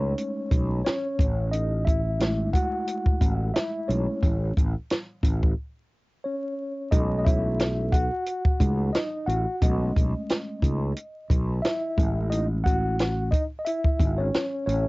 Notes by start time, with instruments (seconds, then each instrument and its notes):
Already playing: fretless electric bass C#2, tine electric piano G#3 A3 C#4 D#4 C#5
0.18 closed hi-hat
0.51 fretless electric bass B1, kick, closed hi-hat
0.84 tine electric piano C#4 C#5, snare, closed hi-hat
1.19 fretless electric bass A1, kick, closed hi-hat
1.51 tine electric piano D#4 D#5, closed hi-hat
1.85 tine electric piano E4 E5, kick, closed hi-hat
2.19 tine electric piano G#3 A3 E4, snare, closed hi-hat
2.53 tine electric piano F#4 F#5, kick, closed hi-hat
2.87 closed hi-hat
3.06 kick
3.21 fretless electric bass A1, kick, closed hi-hat
3.54 tine electric piano E4 E5, snare, closed hi-hat
3.88 fretless electric bass B1, tine electric piano G#3 A3 C#4 E4 C#5, closed hi-hat
4.23 fretless electric bass A1, kick, closed hi-hat
4.57 fretless electric bass A1, kick, closed hi-hat
4.90 snare, closed hi-hat
5.23 fretless electric bass A1, kick, closed hi-hat
5.43 kick
6.24 tine electric piano C#4 C#5
6.91 fretless electric bass B1, tine electric piano G#3 A3 C#4 D#4 D#5, kick, closed hi-hat
7.19 tine electric piano D#5
7.25 tine electric piano E4 E5, kick, closed hi-hat
7.59 snare, closed hi-hat
7.92 tine electric piano F#4 F#5, kick, closed hi-hat
8.26 closed hi-hat
8.45 kick
8.60 fretless electric bass C#2, tine electric piano G#3 A3 C#4 D#4, kick, closed hi-hat
8.93 tine electric piano D#4 D#5, snare, closed hi-hat
9.26 fretless electric bass A1, tine electric piano F#4 F#5, closed hi-hat
9.61 fretless electric bass B1, tine electric piano G#3 A3 C#4 D#5, kick, closed hi-hat
9.96 fretless electric bass B1, kick, closed hi-hat
10.29 snare, closed hi-hat
10.62 fretless electric bass C#2, tine electric piano G#3 A3 C#4 D#4, kick, closed hi-hat
10.96 closed hi-hat
11.30 fretless electric bass B1, kick, closed hi-hat
11.62 tine electric piano E4 E5, snare, closed hi-hat
11.97 fretless electric bass A1, tine electric piano G#3 A3 E4, kick, closed hi-hat
12.30 tine electric piano D#4 D#5, closed hi-hat
12.64 tine electric piano F#4 F#5, kick, closed hi-hat
12.99 snare, closed hi-hat
13.31 tine electric piano D#4 D#5, kick, closed hi-hat
13.59 tine electric piano D#5
13.65 tine electric piano E4 E5, closed hi-hat
13.85 kick
14.00 fretless electric bass G#1, kick, closed hi-hat
14.18 tine electric piano C#4 C#5
14.34 snare, closed hi-hat
14.66 fretless electric bass A1, tine electric piano C#4 C#5, closed hi-hat